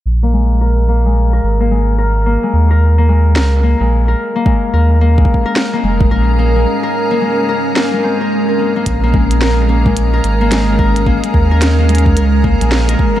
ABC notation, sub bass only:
X:1
M:4/4
L:1/16
Q:"Swing 16ths" 1/4=109
K:Bbm
V:1 name="Sub bass" clef=bass
B,,,8- B,,,2 A,,,6- | A,,, z E,,6 D,,3 B,,,3 z2 | z2 E,,4 z4 F,,,2 B,,,4 | z16 |
B,,,8- B,,,2 A,,,6- | A,,, z E,,6 D,,3 B,,,3 z2 |]